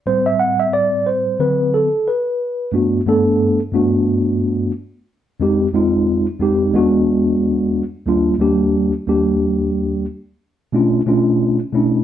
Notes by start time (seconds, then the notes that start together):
0.06 A2 G3 C4 C5
0.26 E5
0.39 F#5
0.60 E5
0.73 D5
1.06 C5
1.39 D3 F#3 C4 B4
1.74 A4
2.08 B4
2.72 G2 A3 B3 D4 F#4
3.06 G2 A3 B3 D4 A4
3.72 G2 A3 B3 D4 F#4
5.40 F2 G#3 C4 D#4 G4
5.73 F2 G#3 C4 D#4 F4
6.39 F2 G#3 C4 D#4 G4
6.73 E2 G#3 B3 D4 F#4
8.06 D#2 G3 A#3 D4 F4
8.39 D#2 G3 A#3 D4 G4
9.06 D#2 G3 A#3 D4 G4
10.72 B2 A3 C#4 D4 F4
11.06 B2 A3 C#4 D4 F4
11.73 B2 A3 C#4 D4 E4